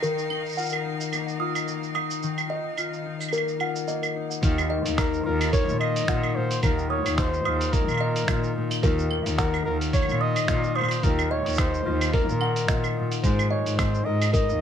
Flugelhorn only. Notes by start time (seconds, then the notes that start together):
4.98 A#4
5.25 A#4
5.53 C#5
5.80 D#5
6.35 C5
6.63 A#4
6.90 C#5
7.17 C5
7.73 A#4
9.38 A#4
9.65 A#4
9.94 C#5
10.21 D#5
10.76 C5
11.04 A#4
11.31 C#5
11.59 C5
12.14 A#4
13.23 C5
13.50 C#5
13.78 C5
14.05 D#5
14.33 D#5